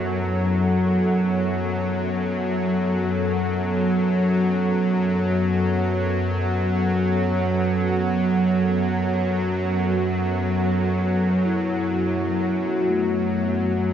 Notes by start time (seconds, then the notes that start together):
Already playing: F#2 F#3 B3 E4 A4
2.88 F#4
11.45 E4
12.81 F#4
12.88 A3